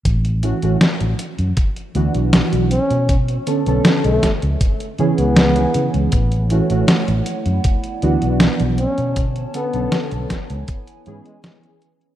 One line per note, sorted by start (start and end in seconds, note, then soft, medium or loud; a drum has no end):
0.05 0.52 A1 medium
0.05 kick loud
0.05 closed hi-hat loud
0.25 closed hi-hat soft
0.43 0.57 E3 medium
0.43 0.58 A3 medium
0.43 0.58 C#4 medium
0.43 0.58 F#4 medium
0.43 closed hi-hat medium
0.62 0.75 A1 medium
0.62 0.76 E3 medium
0.62 0.76 A3 medium
0.62 0.77 C#4 medium
0.62 0.77 F#4 medium
0.62 closed hi-hat soft
0.81 snare loud
0.81 closed hi-hat medium
1.00 1.13 A1 medium
1.00 closed hi-hat soft
1.19 closed hi-hat medium
1.39 1.51 F#2 medium
1.39 closed hi-hat soft
1.57 kick loud
1.57 closed hi-hat loud
1.76 closed hi-hat soft
1.95 2.08 D2 medium
1.95 2.69 E3 medium
1.95 2.69 B3 medium
1.95 2.69 D4 medium
1.95 2.70 F#4 medium
1.95 closed hi-hat soft
2.14 2.39 B1 medium
2.14 closed hi-hat soft
2.33 snare loud
2.33 closed hi-hat medium
2.53 2.77 B1 medium
2.53 closed hi-hat soft
2.71 3.17 C#4 medium
2.71 closed hi-hat medium
2.90 3.37 B2 medium
2.90 closed hi-hat soft
3.09 kick loud
3.09 closed hi-hat loud
3.28 closed hi-hat soft
3.47 3.61 D3 medium
3.47 3.61 B3 medium
3.47 3.62 C#4 medium
3.47 3.62 A4 medium
3.47 closed hi-hat medium
3.66 3.79 B1 medium
3.66 4.21 D3 medium
3.66 4.21 B3 medium
3.66 4.21 C#4 medium
3.66 4.22 A4 loud
3.66 closed hi-hat soft
3.85 snare loud
3.85 closed hi-hat medium
4.04 4.17 B1 medium
4.04 4.31 A3 medium
4.04 closed hi-hat soft
4.23 kick medium
4.23 snare medium
4.23 closed hi-hat medium
4.42 4.55 C#2 medium
4.42 closed hi-hat soft
4.61 kick loud
4.61 closed hi-hat loud
4.80 closed hi-hat soft
4.99 5.12 C#3 medium
4.99 5.52 E3 medium
4.99 5.52 B3 medium
4.99 5.52 C#4 medium
4.99 5.52 G#4 loud
4.99 closed hi-hat soft
5.18 5.65 C#2 medium
5.18 5.94 B3 loud
5.18 closed hi-hat soft
5.37 snare loud
5.37 closed hi-hat medium
5.56 6.11 E3 medium
5.56 6.11 B3 medium
5.56 6.11 C#4 medium
5.56 6.11 G#4 medium
5.56 closed hi-hat soft
5.74 5.88 C#3 medium
5.74 closed hi-hat medium
5.94 6.07 C#2 medium
5.94 closed hi-hat soft
6.12 6.60 A1 medium
6.12 7.64 A3 medium
6.12 8.76 E4 medium
6.12 7.63 C#5 medium
6.12 8.76 F#5 medium
6.12 kick loud
6.12 closed hi-hat medium
6.32 closed hi-hat soft
6.50 6.65 E3 medium
6.50 6.65 A3 medium
6.50 6.65 C#4 medium
6.50 6.66 F#4 medium
6.50 closed hi-hat medium
6.70 6.82 A1 medium
6.70 6.84 E3 medium
6.70 6.84 A3 medium
6.70 6.84 C#4 medium
6.70 6.84 F#4 loud
6.70 closed hi-hat soft
6.88 snare loud
6.88 closed hi-hat medium
7.08 7.20 A1 medium
7.08 closed hi-hat soft
7.26 closed hi-hat medium
7.46 7.58 F#2 loud
7.46 closed hi-hat soft
7.64 12.15 B3 medium
7.64 8.78 D5 medium
7.64 kick loud
7.64 closed hi-hat loud
7.84 closed hi-hat soft
8.02 8.16 D2 loud
8.02 8.76 E3 medium
8.02 8.77 B3 medium
8.02 8.77 D4 medium
8.02 8.77 F#4 loud
8.02 closed hi-hat soft
8.22 8.47 B1 medium
8.22 closed hi-hat soft
8.40 snare loud
8.40 closed hi-hat medium
8.60 8.85 B1 loud
8.60 closed hi-hat soft
8.78 10.29 D3 medium
8.78 9.25 C#4 medium
8.78 12.15 C#5 medium
8.78 10.29 A5 medium
8.78 closed hi-hat medium
8.98 9.44 B2 medium
8.98 closed hi-hat soft
9.16 kick loud
9.16 closed hi-hat medium
9.36 closed hi-hat soft
9.54 9.69 D3 medium
9.54 9.69 B3 medium
9.54 10.01 B3 medium
9.54 9.69 C#4 medium
9.54 9.69 A4 medium
9.54 closed hi-hat medium
9.73 9.86 B1 medium
9.73 10.28 D3 medium
9.73 10.28 B3 medium
9.73 10.29 C#4 medium
9.73 10.29 A4 loud
9.73 closed hi-hat soft
9.92 snare loud
9.92 closed hi-hat medium
10.11 10.24 B1 medium
10.11 closed hi-hat soft
10.30 12.15 E4 medium
10.30 12.15 G#5 medium
10.30 kick medium
10.30 snare medium
10.30 closed hi-hat medium
10.50 10.62 C#2 loud
10.50 closed hi-hat soft
10.68 kick loud
10.68 closed hi-hat medium
10.87 closed hi-hat soft
11.06 11.20 G#2 medium
11.06 11.59 E3 medium
11.06 11.60 B3 medium
11.06 11.60 C#4 medium
11.06 11.60 G#4 loud
11.06 closed hi-hat soft
11.26 11.38 G#3 medium
11.26 closed hi-hat soft
11.44 11.57 G#3 medium
11.44 snare loud
11.44 closed hi-hat medium
11.64 12.15 E3 medium
11.64 12.15 B3 medium
11.64 12.15 C#4 medium
11.64 12.15 G#4 medium
11.64 closed hi-hat soft
11.82 closed hi-hat medium
12.01 closed hi-hat soft